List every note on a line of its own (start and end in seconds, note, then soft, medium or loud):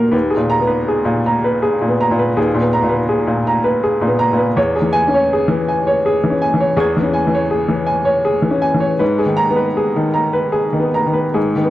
0.00 0.15 A#2 soft
0.00 0.15 A#3 soft
0.00 0.15 F#4 soft
0.00 0.15 A#4 soft
0.00 0.16 A#5 soft
0.11 2.32 D#2 medium
0.11 0.42 B4 soft
0.30 0.61 G#4 soft
0.37 0.78 A#2 soft
0.50 0.80 A#5 medium
0.60 1.02 B3 soft
0.67 0.99 B4 soft
0.88 1.19 G#4 soft
1.05 1.36 A#2 soft
1.26 1.56 A#5 soft
1.44 1.74 B4 soft
1.62 1.93 G#4 medium
1.81 2.10 A#2 soft
1.88 2.27 B3 soft
2.01 2.30 A#5 soft
2.11 2.51 A#2 soft
2.19 2.48 B4 soft
2.37 4.53 D#2 medium
2.37 2.66 G#4 medium
2.54 2.82 A#2 soft
2.61 3.00 B3 soft
2.73 3.02 A#5 medium
2.83 3.23 A#2 soft
2.89 3.20 B4 soft
3.09 3.39 G#4 soft
3.27 3.57 A#2 soft
3.47 3.77 A#5 soft
3.64 3.94 B4 soft
3.83 4.13 G#4 medium
4.02 4.31 A#2 soft
4.07 4.47 B3 soft
4.19 4.49 A#5 medium
4.33 4.57 A#2 soft
4.37 4.56 B4 soft
4.57 6.74 E2 medium
4.57 4.86 C#5 medium
4.76 5.05 G#4 soft
4.82 5.21 E3 soft
4.93 5.22 G#5 medium
5.08 5.46 C#4 soft
5.14 5.42 C#5 soft
5.33 5.61 G#4 medium
5.48 5.78 E3 medium
5.68 5.97 G#5 soft
5.87 6.16 C#5 medium
6.06 6.35 G#4 medium
6.24 6.52 E3 soft
6.30 6.69 C#4 soft
6.42 6.71 G#5 medium
6.54 6.93 E3 medium
6.60 6.90 C#5 medium
6.77 8.96 E2 medium
6.77 7.07 G#4 medium
6.77 8.96 C#6 soft
6.77 8.98 G#6 soft
6.97 7.26 E3 medium
7.02 7.42 C#4 medium
7.14 7.44 G#5 medium
7.27 7.67 E3 soft
7.34 7.64 C#5 medium
7.51 7.81 G#4 medium
7.69 7.99 E3 medium
7.87 8.17 G#5 soft
8.05 8.36 C#5 medium
8.25 8.55 G#4 medium
8.42 8.73 E3 soft
8.51 8.91 C#4 medium
8.62 8.92 G#5 medium
8.74 9.00 E3 soft
8.80 9.00 C#5 medium
8.99 11.31 G#2 medium
8.99 9.30 B4 medium
9.19 9.49 G#4 medium
9.26 9.66 D#3 medium
9.37 9.67 A#5 medium
9.50 9.91 B3 soft
9.56 9.87 B4 soft
9.77 10.07 G#4 soft
9.96 10.27 D#3 soft
10.14 10.46 A#5 soft
10.33 10.66 B4 soft
10.52 10.85 G#4 medium
10.73 11.05 D#3 soft
10.80 11.24 B3 soft
10.94 11.27 A#5 medium
11.06 11.51 D#3 soft
11.13 11.47 B4 soft
11.34 11.70 G#2 medium
11.34 11.68 G#4 soft
11.56 11.70 D#3 soft
11.64 11.70 B3 soft